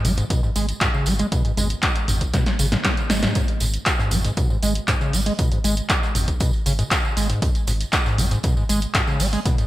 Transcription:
0.05 analog synth bass G#1, acid bass G#3, mid tom, open hi-hat, tambourine
0.17 acid bass G#2, closed hi-hat, tambourine
0.30 acid bass B2, kick, closed hi-hat, tambourine
0.43 acid bass G#2, tambourine
0.56 analog synth bass G#1, acid bass G#3, open hi-hat, tambourine
0.69 closed hi-hat, tambourine
0.81 acid bass G#2, kick, clap, closed hi-hat, tambourine
0.94 acid bass C#3, tambourine
1.06 analog synth bass G#1, acid bass G#3, open hi-hat, tambourine
1.19 acid bass G#3, closed hi-hat, tambourine
1.32 acid bass B2, kick, closed hi-hat, tambourine
1.45 acid bass G#2, closed hi-hat, tambourine
1.57 analog synth bass G#1, acid bass G#3, mid tom, open hi-hat, tambourine
1.70 closed hi-hat, tambourine
1.82 kick, clap, closed hi-hat, tambourine
1.95 closed hi-hat, tambourine
2.08 analog synth bass G#1, mid tom, open hi-hat, tambourine
2.21 kick, closed hi-hat, tambourine
2.34 acid bass B2, kick, snare, closed hi-hat, tambourine
2.46 snare, closed hi-hat, tambourine
2.59 analog synth bass G#1, acid bass C#3, open hi-hat, tambourine
2.72 acid bass G#2, snare, closed hi-hat, tambourine
2.84 kick, snare, clap, closed hi-hat, tambourine
2.97 closed hi-hat, tambourine
3.10 analog synth bass G#1, acid bass G#3, snare, open hi-hat, tambourine
3.22 acid bass G#2, snare, closed hi-hat, tambourine
3.35 acid bass G#2, kick, closed hi-hat, tambourine
3.48 closed hi-hat, tambourine
3.60 analog synth bass G#1, acid bass G#2, closed hi-hat, open hi-hat, tambourine
3.74 closed hi-hat, tambourine
3.85 kick, snare, clap, closed hi-hat, tambourine
3.99 acid bass G#2, snare, tambourine
4.11 analog synth bass G#1, acid bass G#3, closed hi-hat, mid tom, open hi-hat, tambourine
4.24 acid bass G#2, snare, closed hi-hat, tambourine
4.37 acid bass B2, kick, closed hi-hat, tambourine
4.50 acid bass G#2, tambourine
4.63 analog synth bass G#1, acid bass G#3, closed hi-hat, open hi-hat, tambourine
4.75 closed hi-hat, tambourine
4.88 acid bass G#2, kick, snare, clap, closed hi-hat, tambourine
5.00 acid bass C#3, snare, tambourine
5.13 analog synth bass G#1, acid bass G#3, open hi-hat, tambourine
5.26 acid bass G#3, snare, closed hi-hat, tambourine
5.39 acid bass B2, kick, closed hi-hat, tambourine
5.51 acid bass G#2, closed hi-hat, tambourine
5.64 analog synth bass G#1, acid bass G#3, closed hi-hat, open hi-hat, tambourine
5.77 closed hi-hat, tambourine
5.89 kick, snare, clap, closed hi-hat, tambourine
6.03 snare, tambourine
6.15 analog synth bass G#1, closed hi-hat, mid tom, open hi-hat, tambourine
6.28 kick, closed hi-hat, tambourine
6.40 acid bass B2, kick, closed hi-hat, tambourine
6.53 closed hi-hat, tambourine
6.66 analog synth bass G#1, acid bass C#3, closed hi-hat, open hi-hat, tambourine
6.79 acid bass G#2, closed hi-hat, tambourine
6.91 kick, snare, clap, closed hi-hat, tambourine
7.05 tambourine
7.17 analog synth bass G#1, acid bass G#3, closed hi-hat, open hi-hat, tambourine
7.29 acid bass G#2, snare, closed hi-hat, tambourine
7.42 acid bass G#2, kick, closed hi-hat, tambourine
7.55 closed hi-hat, tambourine
7.67 analog synth bass G#1, acid bass G#2, closed hi-hat, open hi-hat, tambourine
7.81 closed hi-hat, tambourine
7.92 kick, snare, clap, closed hi-hat, tambourine
8.06 acid bass G#2, snare, tambourine
8.18 analog synth bass G#1, acid bass G#3, closed hi-hat, mid tom, open hi-hat, tambourine
8.31 acid bass G#2, snare, closed hi-hat, tambourine
8.43 acid bass B2, kick, closed hi-hat, tambourine
8.57 acid bass G#2, tambourine
8.69 analog synth bass G#1, acid bass G#3, closed hi-hat, open hi-hat, tambourine
8.82 closed hi-hat, tambourine
8.94 acid bass G#2, kick, snare, clap, closed hi-hat, tambourine
9.07 acid bass C#3, snare, tambourine
9.20 analog synth bass G#1, acid bass G#3, open hi-hat, tambourine
9.33 acid bass G#3, snare, closed hi-hat, tambourine
9.45 acid bass B2, kick, closed hi-hat, tambourine
9.58 acid bass G#2, closed hi-hat, tambourine

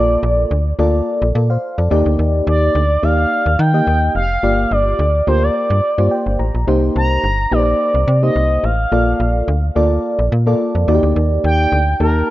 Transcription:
Already playing: fm bass A#1, fm electric piano A#3 F4 A4 D5, analog synth lead D5
0.23 fm bass A#1
0.51 fm bass D2
0.79 fm bass D2, fm electric piano A#3 F4 A4 D5
1.22 fm bass A#1
1.35 fm bass A#2, fm electric piano A4 D5
1.50 fm electric piano C5 F5
1.78 fm bass F2, fm electric piano A4 D5
1.90 fm bass D#2, fm electric piano A#3 D#4 G4 D5
2.06 fm bass D2
2.19 fm bass D#2
2.47 fm bass D#2, analog synth lead D5
2.75 fm bass D2
3.03 fm bass D#2, fm electric piano A#3 D#4 G4 D5, analog synth lead F5
3.46 fm bass D#2
3.59 fm bass D#3, analog synth lead G5
3.73 fm electric piano A#3 D#4 G4 D#5
3.87 fm bass D#2
4.15 fm bass F1, analog synth lead F5
4.43 fm bass G1, fm electric piano A#3 F4 G4 D5
4.71 fm bass G1, analog synth lead D5
4.99 fm bass D2
5.27 fm bass D2, fm electric piano A#3 F4 G4 A#4, analog synth lead C5
5.43 analog synth lead D5
5.70 fm bass G2
5.98 fm bass G2, fm electric piano A#3 F4 G4 C5
6.11 fm electric piano G5
6.26 fm bass G1
6.39 fm bass A1, fm electric piano A#5
6.55 fm bass A#1
6.67 fm bass C2, fm electric piano A#3 D#4 G4 C5
6.96 fm bass C2, analog synth lead A#5
7.24 fm bass G1
7.51 fm bass A#1, fm electric piano A#3 D#4 G4 B4, analog synth lead D5
7.59 fm electric piano C5
7.95 fm bass C2
8.08 fm bass C3
8.22 fm electric piano A#3 D#4 G4 C5, analog synth lead D#5
8.36 fm bass C2
8.64 fm bass A1, analog synth lead F5
8.92 fm bass A#1, fm electric piano A#3 F4 A4 D5
9.20 fm bass A#1
9.48 fm bass D2
9.75 fm bass D2, fm electric piano A#3 F4 A4 D5
10.19 fm bass A#1
10.32 fm bass A#2
10.46 fm electric piano A#3 F4 A4 D5
10.75 fm bass F2
10.88 fm bass D#2, fm electric piano A#3 D#4 F#4 D5
10.95 fm electric piano G4
11.03 fm bass D2
11.16 fm bass D#2
11.44 fm bass D#2, analog synth lead G5
11.72 fm bass D2
12.00 fm bass D#2, fm electric piano A#3 D#4 G4 A5, analog synth lead A#4

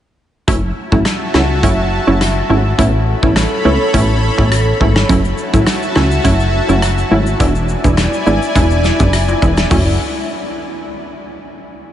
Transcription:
0.48 analog synth bass F#1, synth stab F#3 A3 C#4 E4, analog synth pad F#4 E5 A5, kick, closed hi-hat
0.92 analog synth bass A1, synth stab F#3 A3 C#4 E4, kick
1.05 cross-stick, snare, closed hi-hat
1.34 analog synth bass C#2, synth stab F#3 A3 C#4 E4, cross-stick, snare
1.63 analog synth bass F#1, synth stab F#3 A3 C#4 E4, kick, closed hi-hat
2.07 analog synth bass F#1, synth stab F#3 A3 C#4 E4
2.21 cross-stick, snare, closed hi-hat
2.49 analog synth bass G#1, synth stab F#3 A3 C#4 E4
2.78 analog synth bass A1, synth stab A3 B3 C#4 E4, analog synth pad A4 C#5 B5, kick, closed hi-hat
3.22 analog synth bass A1, synth stab A3 B3 C#4 E4, kick
3.36 cross-stick, snare, closed hi-hat
3.65 analog synth bass C#2, synth stab A3 B3 C#4 E4
3.94 analog synth bass A1, synth stab A3 B3 C#4 E4, kick, closed hi-hat
4.38 analog synth bass A1, synth stab A3 B3 C#4 E4, kick
4.52 cross-stick, closed hi-hat
4.80 analog synth bass G#1, synth stab A3 B3 C#4 E4, kick
4.96 cross-stick, snare
5.09 analog synth bass F#1, synth stab F#3 A3 C#4 E4, analog synth pad F#4 E5 A5, kick, closed hi-hat, shaker
5.25 shaker
5.38 shaker
5.53 analog synth bass A1, synth stab F#3 A3 C#4 E4, kick, shaker
5.67 cross-stick, snare, closed hi-hat, shaker
5.83 shaker
5.96 analog synth bass C#2, synth stab F#3 A3 C#4 E4, cross-stick, snare
6.12 shaker
6.24 analog synth bass F#1, synth stab F#3 A3 C#4 E4, kick, closed hi-hat, shaker
6.40 shaker
6.68 analog synth bass F#1, synth stab F#3 A3 C#4 E4, shaker
6.82 cross-stick, closed hi-hat, shaker
6.98 shaker
7.11 analog synth bass G#1, synth stab F#3 A3 C#4 E4
7.27 shaker
7.40 analog synth bass E1, synth stab G#3 B3 D4 E4, analog synth pad E4 D5 G#5, kick, closed hi-hat, shaker
7.55 shaker
7.69 shaker
7.84 analog synth bass E1, synth stab G#3 B3 D4 E4, kick, shaker
7.97 cross-stick, snare, closed hi-hat, shaker
8.13 shaker
8.26 analog synth bass G#1, synth stab G#3 B3 D4 E4, shaker
8.42 shaker
8.55 analog synth bass E1, synth stab G#3 B3 D4 E4, kick, closed hi-hat, shaker
8.71 shaker
8.84 snare, shaker
9.00 analog synth bass F#1, synth stab G#3 B3 D4 E4, kick, shaker
9.13 cross-stick, closed hi-hat, shaker
9.28 high timbale, shaker
9.42 analog synth bass E1, synth stab G#3 B3 D4 E4, kick, shaker
9.57 cross-stick, snare, shaker
9.71 analog synth bass F#1, synth stab F#3 A3 C#4 E4, kick, floor tom, open hi-hat, shaker

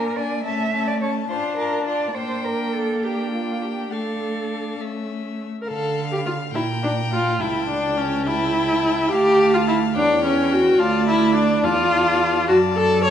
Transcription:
Already playing: viola A#3, violin D4 G#5, cello A#4
0.17 violin D4 G#5, cello D5
0.45 viola A3, violin C#4 A5, cello E5
0.73 violin C#4 A5
0.88 cello D5
1.01 violin C#4 A5, cello C#5
1.29 viola D4, violin F4 A5, cello C5
1.57 violin F4 A5, cello A#4
1.86 violin F4 A5, cello D5
2.15 viola A#3, violin D4 G5, cello C5
2.45 cello A#4
2.74 cello A4
3.02 violin D4 G5, cello G4
3.32 cello F4
3.62 cello G4
3.92 viola A3, violin D4 F5, cello A4
4.80 viola A3, violin C#4 E5
5.61 viola A#4
5.68 cello D3, viola A4, violin F5
6.12 viola G4
6.26 viola F4
6.54 cello A#2, viola E4, violin G5 A#5
6.83 viola D4
7.13 viola F4
7.40 cello C#2, viola E4, violin G5 A5
7.69 viola D4
7.97 viola C#4
8.27 viola E4, violin G5 A5
9.11 cello D2, viola G4, violin F5 A5
9.54 viola F4
9.68 viola E4
9.95 cello E2, viola D4, violin C#5 G5
10.24 viola C#4
10.52 viola F#4
10.79 cello D2, viola F4, violin D5 A5
11.08 viola E4
11.36 viola D4
11.64 cello E2, viola F4, violin D5 A5
12.48 cello F#2, viola F#4, violin D5 A5
12.77 viola A4
13.05 viola C#5

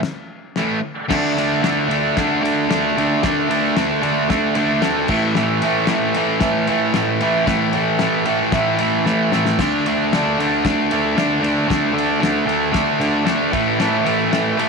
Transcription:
0.03 snare, crash
0.56 distorted electric guitar A2 E3 A3, snare, crash
1.08 distorted electric guitar D3 A3 D4, kick, snare, crash
1.38 distorted electric guitar D3 A3 D4, ride
1.63 distorted electric guitar D3 A3 D4, snare, ride
1.89 distorted electric guitar D3 A3 D4, ride
2.17 distorted electric guitar D3 A3 D4, kick, snare, ride
2.42 distorted electric guitar D3 A3 D4, ride
2.69 distorted electric guitar D3 A3 D4, snare, ride
2.97 distorted electric guitar D3 A3 D4, ride
3.23 distorted electric guitar D3 A3 D4, kick, snare, ride
3.49 distorted electric guitar D3 A3 D4, ride
3.76 distorted electric guitar D3 A3 D4, snare, ride
4.02 distorted electric guitar D3 A3 D4, ride
4.29 distorted electric guitar D3 A3 D4, kick, snare, ride
4.55 distorted electric guitar D3 A3 D4, ride
4.82 distorted electric guitar D3 A3 D4, snare, ride
5.08 distorted electric guitar A2 E3 A3, kick, crash
5.35 distorted electric guitar A2 E3 A3, snare
5.62 distorted electric guitar A2 E3 A3, ride
5.87 distorted electric guitar A2 E3 A3, snare, ride
6.14 distorted electric guitar A2 E3 A3, ride
6.40 distorted electric guitar A2 E3 A3, kick, snare, ride
6.67 distorted electric guitar A2 E3 A3, ride
6.94 distorted electric guitar A2 E3 A3, snare, ride
7.21 distorted electric guitar A2 E3 A3, ride
7.46 distorted electric guitar A2 E3 A3, kick, snare, ride
7.73 distorted electric guitar A2 E3 A3, ride
7.99 distorted electric guitar A2 E3 A3, snare, ride
8.25 distorted electric guitar A2 E3 A3, ride
8.52 distorted electric guitar A2 E3 A3, kick, snare, ride
8.78 distorted electric guitar A2 E3 A3, ride
9.06 distorted electric guitar A2 E3 A3, snare
9.32 distorted electric guitar A2 E3 A3, snare
9.46 snare
9.59 distorted electric guitar D3 A3 D4, kick, snare, crash
9.86 distorted electric guitar D3 A3 D4, ride
10.13 distorted electric guitar D3 A3 D4, snare, ride
10.38 distorted electric guitar D3 A3 D4, ride
10.64 distorted electric guitar D3 A3 D4, kick, snare, ride
10.91 distorted electric guitar D3 A3 D4, ride
11.16 distorted electric guitar D3 A3 D4, snare, ride
11.41 distorted electric guitar D3 A3 D4, ride
11.68 distorted electric guitar D3 A3 D4, kick, snare, ride
11.93 distorted electric guitar D3 A3 D4
11.98 ride
12.20 distorted electric guitar D3 A3 D4, snare, ride
12.46 distorted electric guitar D3 A3 D4, ride
12.72 distorted electric guitar D3 A3 D4, kick, snare, ride
13.00 distorted electric guitar D3 A3 D4, ride
13.25 distorted electric guitar D3 A3 D4, snare, ride
13.52 distorted electric guitar A2 E3 A3, kick, ride
13.80 distorted electric guitar A2 E3 A3, snare, ride
14.05 distorted electric guitar A2 E3 A3, ride
14.32 distorted electric guitar A2 E3 A3, snare, ride
14.58 distorted electric guitar A2 E3 A3, ride

